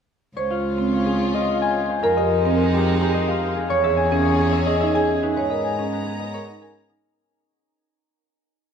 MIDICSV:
0, 0, Header, 1, 5, 480
1, 0, Start_track
1, 0, Tempo, 555556
1, 322, Time_signature, 3, 2, 24, 8
1, 7544, End_track
2, 0, Start_track
2, 0, Title_t, "Harp"
2, 0, Program_c, 0, 46
2, 316, Note_on_c, 0, 73, 61
2, 440, Note_on_c, 0, 77, 51
2, 790, Note_off_c, 0, 73, 0
2, 800, Note_on_c, 0, 73, 46
2, 917, Note_on_c, 0, 68, 52
2, 1159, Note_on_c, 0, 75, 59
2, 1264, Note_off_c, 0, 77, 0
2, 1274, Note_on_c, 0, 77, 53
2, 1397, Note_on_c, 0, 80, 79
2, 1635, Note_on_c, 0, 72, 61
2, 1752, Note_on_c, 0, 70, 79
2, 1781, Note_off_c, 0, 73, 0
2, 1863, Note_off_c, 0, 75, 0
2, 1874, Note_on_c, 0, 75, 57
2, 2229, Note_off_c, 0, 70, 0
2, 2239, Note_on_c, 0, 70, 60
2, 2359, Note_on_c, 0, 67, 67
2, 2586, Note_off_c, 0, 72, 0
2, 2596, Note_on_c, 0, 72, 65
2, 2705, Note_off_c, 0, 75, 0
2, 2715, Note_on_c, 0, 75, 68
2, 2825, Note_off_c, 0, 77, 0
2, 2835, Note_on_c, 0, 77, 83
2, 3064, Note_off_c, 0, 68, 0
2, 3074, Note_on_c, 0, 68, 62
2, 3195, Note_on_c, 0, 73, 85
2, 3218, Note_off_c, 0, 72, 0
2, 3218, Note_off_c, 0, 75, 0
2, 3218, Note_off_c, 0, 77, 0
2, 3220, Note_off_c, 0, 67, 0
2, 3220, Note_off_c, 0, 70, 0
2, 3314, Note_on_c, 0, 76, 68
2, 3419, Note_off_c, 0, 80, 0
2, 3430, Note_on_c, 0, 80, 65
2, 3544, Note_off_c, 0, 68, 0
2, 3554, Note_on_c, 0, 68, 82
2, 3661, Note_off_c, 0, 73, 0
2, 3672, Note_on_c, 0, 73, 61
2, 3782, Note_off_c, 0, 68, 0
2, 3793, Note_on_c, 0, 68, 64
2, 3898, Note_off_c, 0, 76, 0
2, 3908, Note_on_c, 0, 76, 76
2, 4029, Note_on_c, 0, 75, 66
2, 4140, Note_off_c, 0, 76, 0
2, 4150, Note_on_c, 0, 76, 62
2, 4263, Note_off_c, 0, 80, 0
2, 4273, Note_on_c, 0, 80, 71
2, 4512, Note_on_c, 0, 71, 54
2, 4625, Note_off_c, 0, 71, 0
2, 4635, Note_on_c, 0, 71, 65
2, 4655, Note_off_c, 0, 76, 0
2, 4656, Note_off_c, 0, 73, 0
2, 4741, Note_off_c, 0, 75, 0
2, 4751, Note_on_c, 0, 75, 49
2, 4866, Note_off_c, 0, 80, 0
2, 4876, Note_on_c, 0, 80, 53
2, 4989, Note_off_c, 0, 68, 0
2, 5000, Note_on_c, 0, 68, 65
2, 5108, Note_off_c, 0, 71, 0
2, 5119, Note_on_c, 0, 71, 52
2, 5228, Note_off_c, 0, 68, 0
2, 5239, Note_on_c, 0, 68, 56
2, 5343, Note_off_c, 0, 75, 0
2, 5354, Note_on_c, 0, 75, 65
2, 5477, Note_on_c, 0, 73, 55
2, 5588, Note_off_c, 0, 75, 0
2, 5598, Note_on_c, 0, 75, 56
2, 5706, Note_off_c, 0, 80, 0
2, 5716, Note_on_c, 0, 80, 62
2, 5960, Note_on_c, 0, 70, 54
2, 6099, Note_off_c, 0, 73, 0
2, 6099, Note_off_c, 0, 75, 0
2, 6099, Note_off_c, 0, 80, 0
2, 6100, Note_off_c, 0, 68, 0
2, 6100, Note_off_c, 0, 70, 0
2, 6100, Note_off_c, 0, 71, 0
2, 7544, End_track
3, 0, Start_track
3, 0, Title_t, "Marimba"
3, 0, Program_c, 1, 12
3, 319, Note_on_c, 1, 72, 60
3, 438, Note_on_c, 1, 65, 49
3, 477, Note_off_c, 1, 72, 0
3, 597, Note_off_c, 1, 65, 0
3, 678, Note_on_c, 1, 60, 64
3, 837, Note_off_c, 1, 60, 0
3, 1158, Note_on_c, 1, 65, 57
3, 1317, Note_off_c, 1, 65, 0
3, 1760, Note_on_c, 1, 70, 78
3, 1882, Note_on_c, 1, 67, 59
3, 1918, Note_off_c, 1, 70, 0
3, 2038, Note_off_c, 1, 67, 0
3, 2121, Note_on_c, 1, 60, 76
3, 2278, Note_off_c, 1, 60, 0
3, 2601, Note_on_c, 1, 67, 72
3, 2758, Note_off_c, 1, 67, 0
3, 3201, Note_on_c, 1, 73, 80
3, 3321, Note_on_c, 1, 68, 68
3, 3358, Note_off_c, 1, 73, 0
3, 3478, Note_off_c, 1, 68, 0
3, 3560, Note_on_c, 1, 61, 79
3, 3718, Note_off_c, 1, 61, 0
3, 4042, Note_on_c, 1, 68, 58
3, 4162, Note_on_c, 1, 63, 60
3, 4198, Note_off_c, 1, 68, 0
3, 4282, Note_on_c, 1, 68, 73
3, 4318, Note_off_c, 1, 63, 0
3, 4438, Note_off_c, 1, 68, 0
3, 4522, Note_on_c, 1, 63, 56
3, 4643, Note_on_c, 1, 73, 61
3, 4678, Note_off_c, 1, 63, 0
3, 4762, Note_on_c, 1, 70, 52
3, 4799, Note_off_c, 1, 73, 0
3, 4918, Note_off_c, 1, 70, 0
3, 5002, Note_on_c, 1, 61, 66
3, 5158, Note_off_c, 1, 61, 0
3, 5482, Note_on_c, 1, 70, 53
3, 5601, Note_on_c, 1, 63, 56
3, 5638, Note_off_c, 1, 70, 0
3, 5719, Note_on_c, 1, 70, 67
3, 5758, Note_off_c, 1, 63, 0
3, 5877, Note_off_c, 1, 70, 0
3, 5959, Note_on_c, 1, 63, 58
3, 6117, Note_off_c, 1, 63, 0
3, 7544, End_track
4, 0, Start_track
4, 0, Title_t, "Violin section"
4, 0, Program_c, 2, 48
4, 319, Note_on_c, 2, 61, 54
4, 320, Note_on_c, 2, 65, 57
4, 1606, Note_off_c, 2, 61, 0
4, 1607, Note_off_c, 2, 65, 0
4, 1761, Note_on_c, 2, 56, 63
4, 1761, Note_on_c, 2, 63, 60
4, 3047, Note_off_c, 2, 56, 0
4, 3047, Note_off_c, 2, 63, 0
4, 3195, Note_on_c, 2, 61, 67
4, 3196, Note_on_c, 2, 68, 64
4, 4484, Note_off_c, 2, 61, 0
4, 4485, Note_off_c, 2, 68, 0
4, 4642, Note_on_c, 2, 59, 54
4, 4642, Note_on_c, 2, 82, 53
4, 5927, Note_off_c, 2, 59, 0
4, 5928, Note_off_c, 2, 82, 0
4, 7544, End_track
5, 0, Start_track
5, 0, Title_t, "Cello"
5, 0, Program_c, 3, 42
5, 320, Note_on_c, 3, 37, 53
5, 1631, Note_off_c, 3, 37, 0
5, 1761, Note_on_c, 3, 41, 68
5, 3071, Note_off_c, 3, 41, 0
5, 3201, Note_on_c, 3, 40, 69
5, 4511, Note_off_c, 3, 40, 0
5, 4642, Note_on_c, 3, 44, 49
5, 5951, Note_off_c, 3, 44, 0
5, 7544, End_track
0, 0, End_of_file